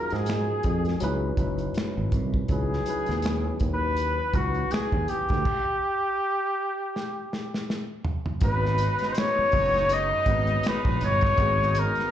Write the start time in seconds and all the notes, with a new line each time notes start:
Already playing: F#3 C#4 D#4 F4 F#4 G#4 A#4
0.10 G#2 G#4, snare, closed hi-hat
0.26 finger snap, snare, closed hi-hat
0.63 F2, kick, closed hi-hat
0.85 snare, closed hi-hat
1.00 C#2 F#3 C#4 D#4 E4 B4, closed hi-hat
1.37 F#1 F#3 C#4 D#4 E4 B4, kick, closed hi-hat
1.58 closed hi-hat
1.74 finger snap, snare, closed hi-hat
1.97 G#1
2.12 C2, kick, closed hi-hat
2.34 kick
2.48 C#2 F#3 C#4 D#4 E4 G#4 B4, kick, closed hi-hat
2.73 snare
2.86 F#3 C#4 D#4 E4, closed hi-hat
2.90 B4
3.06 D#2, snare, closed hi-hat
3.22 finger snap, snare, closed hi-hat
3.60 D#2, kick, closed hi-hat
3.74 B4
3.97 closed hi-hat
4.33 C#2 F#3 C#4 D#4 F#4, kick, closed hi-hat
4.38 E4 B4
4.54 closed hi-hat
4.71 G#4, finger snap, muted fretless electric bass stroke, snare, closed hi-hat
4.92 D#2, kick
5.08 G4, closed hi-hat
5.29 D2, kick, snare, closed hi-hat
5.45 kick, crash
6.96 snare
7.33 snare
7.54 snare
7.70 snare
8.05 floor tom
8.26 floor tom
8.41 G#1 C#3 G#3 B3 C#4 D#4 F#4 B4, kick, closed hi-hat
8.45 B4
8.65 snare
8.78 closed hi-hat
8.99 snare, closed hi-hat
9.12 C5, closed hi-hat
9.18 C#5, finger snap, snare
9.38 muted fretless electric bass stroke
9.52 F#1, kick, open hi-hat
9.74 snare, closed hi-hat
9.89 D#5, closed hi-hat
10.26 G#1 G#3 B3 C#4 F#4, kick, closed hi-hat
10.30 B4
10.47 closed hi-hat
10.63 finger snap, snare, closed hi-hat
10.68 B4
10.85 A#1, kick
11.01 G1 C#5, closed hi-hat
11.21 kick, snare, closed hi-hat
11.37 G#1 G#3 B3 C#4 F#4, kick, closed hi-hat
11.42 G#4
11.62 snare
11.75 closed hi-hat
11.79 A#4
11.95 snare, closed hi-hat